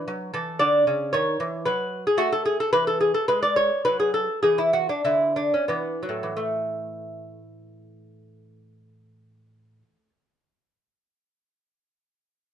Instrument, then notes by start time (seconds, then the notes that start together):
lute
Already playing: B4
0.08 F#3
0.34 E3 A4
0.59 D3 D5
0.87 C#3
1.13 D#3 C#5
1.40 E3
1.65 F#3 B4
2.07 G#4
2.17 A3 F#4
2.32 A4
2.45 G#4
2.60 A4
2.73 E3 B4
2.87 A4
3.01 G#4
3.14 A4
3.28 G#3 B4
3.43 D5
3.56 C#5
3.85 F#3 B4
4.00 G#4
4.14 A4
4.43 E3 G#4
4.58 E4
4.73 F#4
4.89 D4
5.05 D3 E4
5.36 D4
5.54 C#4
5.68 E3 B3
6.03 F#3
6.09 A2
6.23 E3
6.37 A3